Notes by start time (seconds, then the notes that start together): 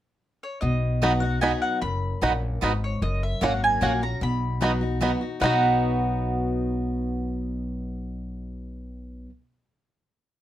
0.43 C#5
0.61 B1 B2 D#5
1.02 F#3 B3 D#4 F#4 D#5 B5
1.20 D#4 F#4 F#5
1.41 F#3 B3 D#4 F#4 D#5 G#5 B5
1.62 F#5
1.82 F#1 F#2 B5
2.21 A#1 A#2 B3 D#4 F#4 D#5 B5
2.61 G#1 G#2 B3 D#4 F#4 D#5 B5
2.84 C#5
3.02 F#1 F#2 D#5
3.23 E5
3.41 G#1 F#3 A#3 C#4 F#4 C#5 F#5
3.64 G#5
3.81 A#1 F#3 A#3 C#4 F#4 C#5 F#5
4.01 C#4 F#4 A#5
4.21 B1 B2 B5
4.61 F#3 B3 D#4 F#4 D#5 B5
4.81 D#4 F#4
5.01 F#3 B3 D#4 F#4 D#5 B5
5.21 D#4 F#4
5.40 B1 B2 F#3 B3 D#4 F#4 D#5 F#5 B5
5.46 F#4